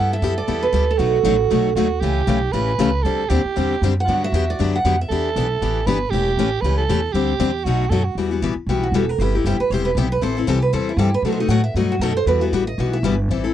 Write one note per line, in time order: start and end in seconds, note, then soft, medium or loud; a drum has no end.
0.00 0.21 G2 medium
0.00 0.15 G3 medium
0.00 0.15 B3 medium
0.00 0.15 E4 medium
0.00 0.16 G4 medium
0.00 1.00 A4 medium
0.00 0.10 F#5 medium
0.13 0.36 E5 medium
0.22 0.47 F#2 medium
0.22 0.32 G3 medium
0.22 0.33 B3 medium
0.22 0.33 E4 medium
0.22 0.33 G4 medium
0.38 0.61 D5 medium
0.48 0.72 E2 medium
0.48 0.66 G3 medium
0.48 0.66 B3 medium
0.48 0.66 E4 medium
0.48 0.66 G4 medium
0.63 0.89 B4 medium
0.73 0.98 D2 medium
0.73 0.83 G3 medium
0.73 0.84 B3 medium
0.73 0.84 E4 medium
0.73 0.84 G4 medium
0.91 1.88 A4 medium
0.98 1.23 B1 medium
0.98 1.17 B2 medium
0.98 1.17 F#3 medium
0.98 1.17 A3 medium
0.98 1.18 D#4 medium
0.98 1.75 F#4 medium
0.98 1.18 F#4 medium
1.23 1.49 A1 medium
1.23 1.35 B2 medium
1.23 1.35 F#3 medium
1.23 1.35 A3 medium
1.23 1.35 D#4 medium
1.23 1.35 F#4 medium
1.50 1.75 B1 medium
1.50 1.69 B2 medium
1.50 1.69 F#3 medium
1.50 1.69 A3 medium
1.50 1.69 D#4 medium
1.50 1.69 F#4 medium
1.75 2.01 D#2 medium
1.75 1.87 B2 medium
1.75 1.87 F#3 medium
1.75 1.87 A3 medium
1.75 1.87 D#4 medium
1.75 2.02 F#4 medium
1.75 1.87 F#4 medium
2.00 2.26 C#2 medium
2.00 2.20 C#3 medium
2.00 2.20 E3 medium
2.00 2.21 A3 medium
2.00 2.21 C#4 medium
2.00 2.53 G4 medium
2.00 2.21 G4 medium
2.27 2.52 B1 medium
2.27 2.37 C#3 medium
2.27 2.38 E3 medium
2.27 2.38 A3 medium
2.27 2.38 C#4 medium
2.27 2.38 G4 medium
2.52 2.78 A1 medium
2.52 2.71 C#3 medium
2.52 2.71 E3 medium
2.52 2.72 A3 medium
2.52 2.72 C#4 medium
2.52 2.72 G4 medium
2.52 3.04 B4 loud
2.78 3.03 C#2 medium
2.78 2.89 C#3 medium
2.78 2.89 E3 medium
2.78 2.90 A3 medium
2.78 2.89 C#4 medium
2.78 2.89 G4 medium
3.02 3.29 D2 medium
3.02 3.23 D3 medium
3.02 3.23 G3 medium
3.02 3.23 C4 medium
3.02 3.23 D4 medium
3.02 3.23 G4 medium
3.02 3.31 A4 loud
3.29 3.43 D#2 medium
3.29 3.40 D3 medium
3.29 3.40 G3 medium
3.29 3.41 C4 medium
3.29 3.40 D4 medium
3.29 3.95 G4 medium
3.29 3.41 G4 loud
3.45 muted upright bass stroke soft
3.56 3.81 E2 medium
3.56 3.74 D3 medium
3.56 3.74 G3 medium
3.56 3.74 C4 medium
3.56 3.75 D4 medium
3.56 3.75 G4 medium
3.82 4.06 F#2 medium
3.82 3.92 D3 medium
3.82 3.93 G3 medium
3.82 3.92 C4 medium
3.82 3.93 D4 medium
3.82 3.93 G4 loud
4.00 4.22 F#5 medium
4.05 4.32 G2 medium
4.05 4.25 D3 medium
4.05 4.26 F#3 medium
4.05 4.26 B3 medium
4.05 4.26 D4 medium
4.05 4.78 F#4 medium
4.05 4.26 G4 medium
4.24 4.49 E5 loud
4.32 4.57 E2 medium
4.32 4.43 D3 medium
4.32 4.43 F#3 medium
4.32 4.43 B3 medium
4.32 4.44 D4 medium
4.32 4.44 G4 medium
4.50 4.75 D5 medium
4.59 4.84 F#2 medium
4.59 4.77 D3 medium
4.59 4.77 F#3 medium
4.59 4.77 B3 medium
4.59 4.77 D4 medium
4.59 4.77 G4 medium
4.76 5.00 F#5 loud
4.84 5.09 F2 medium
4.84 4.94 D3 medium
4.84 4.95 F#3 medium
4.84 4.95 B3 medium
4.84 4.95 D4 loud
4.84 4.95 G4 medium
5.01 5.98 E5 medium
5.09 5.35 E2 medium
5.09 5.28 E3 medium
5.09 5.28 B3 medium
5.09 5.29 D4 medium
5.09 5.29 G4 medium
5.09 5.87 A4 loud
5.36 5.60 B1 medium
5.36 5.46 E3 medium
5.36 5.46 B3 medium
5.36 5.46 D4 medium
5.36 5.46 G4 medium
5.61 5.86 A1 medium
5.61 5.79 E3 medium
5.61 5.79 B3 medium
5.61 5.80 D4 medium
5.61 5.80 G4 medium
5.86 6.11 G1 medium
5.86 5.97 E3 loud
5.86 5.97 B3 medium
5.86 5.97 D4 medium
5.86 5.98 G4 loud
5.86 6.12 B4 medium
6.10 6.36 E1 medium
6.10 6.30 E3 medium
6.10 6.30 A3 medium
6.10 6.31 C#4 medium
6.10 6.63 G4 loud
6.14 6.31 G4 medium
6.37 6.62 A1 medium
6.37 6.48 E3 medium
6.37 6.48 A3 medium
6.37 6.48 C#4 medium
6.37 6.49 G4 medium
6.61 6.87 C#2 medium
6.61 6.82 E3 medium
6.61 6.82 A3 medium
6.61 6.76 B4 loud
6.66 6.82 C#4 medium
6.66 6.82 G4 medium
6.77 7.14 A4 medium
6.89 7.13 E2 medium
6.89 6.99 E3 medium
6.89 6.99 A3 medium
6.89 7.00 C#4 medium
6.89 7.00 G4 loud
7.12 7.39 D2 medium
7.12 7.32 D3 medium
7.12 7.33 G3 medium
7.12 7.33 C4 medium
7.12 7.33 D4 medium
7.12 7.66 G4 medium
7.12 7.33 G4 medium
7.39 7.64 E2 medium
7.39 7.50 D3 medium
7.39 7.50 G3 medium
7.39 7.50 C4 medium
7.39 7.50 D4 medium
7.39 7.50 G4 medium
7.64 7.90 B1 medium
7.64 7.84 B2 medium
7.64 7.84 F#3 medium
7.64 7.84 A3 medium
7.64 7.84 D#4 medium
7.64 7.91 F#4 medium
7.64 7.85 F#4 medium
7.90 8.14 F#2 medium
7.90 8.01 B2 medium
7.90 8.02 F#3 medium
7.90 8.02 A3 medium
7.90 8.02 D#4 medium
7.90 8.02 F#4 medium
7.90 8.06 A4 medium
8.04 8.16 F#4 medium
8.15 8.41 E2 medium
8.15 8.31 E3 medium
8.15 8.31 G3 medium
8.15 8.31 B3 medium
8.15 8.30 F#4 medium
8.31 8.41 G3 soft
8.31 8.42 B3 soft
8.31 8.42 F#4 medium
8.42 8.55 A1 medium
8.42 8.52 E3 medium
8.42 8.52 G3 medium
8.42 8.53 B3 medium
8.42 8.53 F#4 medium
8.55 muted upright bass stroke soft
8.66 8.91 B1 medium
8.66 8.86 E3 medium
8.66 8.87 G3 medium
8.66 8.87 B3 medium
8.66 8.87 F#4 medium
8.66 8.82 G4 medium
8.83 8.94 F#4 medium
8.92 9.17 E1 medium
8.92 9.04 E3 medium
8.92 9.04 G3 medium
8.92 9.04 B3 medium
8.92 9.04 F#4 medium
8.92 9.09 A4 medium
9.09 9.20 A#4 medium
9.18 9.44 G1 medium
9.18 9.34 C3 medium
9.18 9.34 G3 medium
9.18 9.34 B3 medium
9.18 9.34 E4 medium
9.18 9.34 G4 medium
9.18 9.33 B4 medium
9.35 9.46 B3 soft
9.35 9.45 D#4 medium
9.35 9.45 E4 soft
9.35 9.45 G4 medium
9.44 9.58 F#1 medium
9.44 9.55 C3 medium
9.44 9.56 G3 medium
9.44 9.56 B3 medium
9.44 9.56 E4 medium
9.44 9.60 G4 medium
9.44 9.56 G4 medium
9.59 9.71 B4 medium
9.59 muted upright bass stroke soft
9.70 9.94 E1 medium
9.70 9.90 C3 medium
9.70 9.90 G3 medium
9.70 9.89 B3 medium
9.70 9.90 E4 medium
9.70 9.90 G4 medium
9.70 9.85 C5 medium
9.85 9.96 B4 medium
9.95 10.20 B1 medium
9.95 10.07 C3 medium
9.95 10.07 G3 medium
9.95 10.07 B3 loud
9.95 10.07 E4 medium
9.95 10.11 G4 medium
9.95 10.08 G4 medium
10.12 10.22 B4 medium
10.21 10.47 A1 medium
10.21 10.35 E3 medium
10.21 10.36 G3 medium
10.21 10.36 C4 medium
10.21 10.36 E4 medium
10.21 10.36 A4 medium
10.21 10.36 C5 loud
10.37 10.47 C4 soft
10.37 10.48 E4 soft
10.37 10.47 E4 soft
10.37 10.47 A4 medium
10.47 10.72 C2 medium
10.47 10.57 E3 medium
10.47 10.58 G3 medium
10.47 10.58 C4 medium
10.47 10.58 E4 medium
10.47 10.62 G4 medium
10.47 10.58 A4 loud
10.62 10.73 B4 medium
10.73 10.96 E2 medium
10.73 10.91 E3 medium
10.73 10.91 G3 medium
10.73 10.91 C4 medium
10.73 10.91 E4 medium
10.73 10.91 A4 medium
10.73 10.87 C5 medium
10.89 11.00 E4 medium
10.97 11.22 G2 loud
10.97 11.09 E3 medium
10.97 11.09 G3 medium
10.97 11.09 C4 medium
10.97 11.09 E4 loud
10.97 11.13 G4 medium
10.97 11.09 A4 medium
11.14 11.24 B4 loud
11.22 11.47 B2 medium
11.22 11.38 B2 medium
11.22 11.39 F#3 medium
11.22 11.39 A3 medium
11.22 11.32 A4 medium
11.26 11.39 D#4 medium
11.26 11.39 F#4 medium
11.32 11.40 C5 medium
11.40 11.49 A3 soft
11.40 11.49 D#4 soft
11.40 11.50 F#4 soft
11.40 11.49 D#5 medium
11.48 11.74 A2 medium
11.48 11.60 B2 medium
11.48 11.60 F#3 medium
11.48 11.60 A3 medium
11.48 11.60 D#4 medium
11.48 11.61 F#4 medium
11.48 11.63 F#5 medium
11.64 11.75 E5 medium
11.74 11.99 G2 medium
11.74 11.94 B2 medium
11.74 11.94 F#3 medium
11.74 11.94 A3 medium
11.74 11.94 D#4 medium
11.74 11.94 F#4 medium
11.74 11.90 D#5 medium
11.92 12.01 F#4 medium
11.99 12.25 F#2 medium
11.99 12.12 B2 medium
11.99 12.12 F#3 medium
11.99 12.12 A3 medium
11.99 12.12 D#4 medium
11.99 12.12 F#4 loud
11.99 12.15 A4 medium
12.17 12.27 C5 loud
12.26 12.51 E2 medium
12.26 12.41 E3 medium
12.26 12.41 G3 medium
12.26 12.41 B3 medium
12.26 12.41 F#4 medium
12.26 12.41 B4 medium
12.41 12.52 G3 soft
12.41 12.53 B3 soft
12.41 12.52 F#4 medium
12.41 12.48 E5 medium
12.52 12.77 A1 medium
12.52 12.63 E3 medium
12.52 12.63 G3 medium
12.52 12.63 B3 medium
12.52 12.63 F#4 medium
12.67 12.91 D#5 medium
12.78 13.02 B1 medium
12.78 12.96 E3 medium
12.78 12.97 G3 medium
12.78 12.97 B3 medium
12.78 12.97 F#4 medium
12.93 13.04 E5 medium
13.03 13.28 G1 medium
13.03 13.14 E3 medium
13.03 13.14 G3 loud
13.03 13.14 B3 medium
13.03 13.14 F#4 loud
13.03 13.18 B4 medium
13.29 13.54 A1 medium
13.29 13.44 E3 medium
13.29 13.44 G3 medium
13.29 13.44 C4 medium
13.29 13.43 E4 medium
13.29 13.43 A4 medium
13.44 13.53 C4 soft
13.44 13.54 E4 medium
13.44 13.54 A4 medium